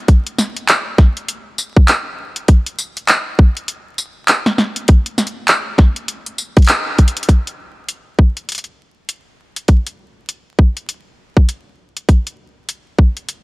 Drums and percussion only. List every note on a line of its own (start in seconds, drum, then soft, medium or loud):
0.08 kick loud
0.08 closed hi-hat medium
0.27 closed hi-hat soft
0.39 snare medium
0.39 tambourine medium
0.57 closed hi-hat soft
0.69 clap loud
0.69 closed hi-hat medium
0.98 kick loud
0.98 snare soft
1.17 closed hi-hat soft
1.28 closed hi-hat medium
1.58 tambourine medium
1.76 kick loud
1.88 clap loud
1.88 closed hi-hat medium
2.36 closed hi-hat soft
2.48 kick loud
2.48 closed hi-hat medium
2.66 closed hi-hat medium
2.79 tambourine medium
2.97 closed hi-hat soft
3.08 clap loud
3.08 closed hi-hat medium
3.39 kick loud
3.57 closed hi-hat soft
3.68 closed hi-hat medium
3.98 tambourine medium
4.28 clap loud
4.28 closed hi-hat medium
4.46 snare medium
4.58 snare medium
4.76 closed hi-hat medium
4.88 kick loud
4.88 closed hi-hat medium
5.06 closed hi-hat medium
5.18 snare medium
5.18 tambourine medium
5.27 closed hi-hat soft
5.48 clap loud
5.48 closed hi-hat medium
5.78 kick loud
5.78 snare soft
5.96 closed hi-hat soft
6.08 closed hi-hat medium
6.26 closed hi-hat soft
6.38 tambourine medium
6.57 kick loud
6.57 closed hi-hat soft
6.58 closed hi-hat soft
6.62 closed hi-hat soft
6.65 closed hi-hat soft
6.66 clap loud
6.66 closed hi-hat soft
6.68 closed hi-hat medium
6.98 kick medium
6.98 closed hi-hat medium
7.08 closed hi-hat medium
7.17 closed hi-hat medium
7.23 closed hi-hat medium
7.29 kick loud
7.29 closed hi-hat medium
7.47 closed hi-hat soft
7.89 closed hi-hat medium
8.19 kick medium
8.37 closed hi-hat soft
8.49 closed hi-hat medium
8.52 closed hi-hat medium
8.55 closed hi-hat soft
8.58 closed hi-hat soft
8.64 closed hi-hat soft
9.09 closed hi-hat medium
9.56 closed hi-hat soft
9.68 kick loud
9.68 closed hi-hat medium
9.87 closed hi-hat soft
10.29 closed hi-hat medium
10.59 kick medium
10.77 closed hi-hat soft
10.89 closed hi-hat medium
11.37 kick loud
11.49 closed hi-hat medium
11.97 closed hi-hat soft
12.09 kick loud
12.09 closed hi-hat medium
12.27 closed hi-hat soft
12.69 closed hi-hat medium
12.99 kick loud
13.17 closed hi-hat soft
13.29 closed hi-hat medium